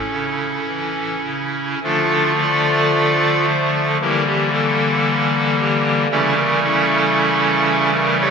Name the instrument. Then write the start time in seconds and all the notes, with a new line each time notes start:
pipe organ
Already playing: C#4 E4 A4
0.11 C#3
0.68 E3
1.25 C#3
1.83 D3 F3 A3 D4 F4 A4
2.41 F4 A4 D5
3.49 C5
3.74 A4
4.01 D3 E3 G3 A#3 E4 G4 A#4
4.27 G4
4.53 A4
5.59 G4
6.11 C#3 E3 G3 A3 C#4 E4 A4
6.37 A#4
6.64 C#4 E4 A4
7.94 A#4
8.21 G4 A4 C#5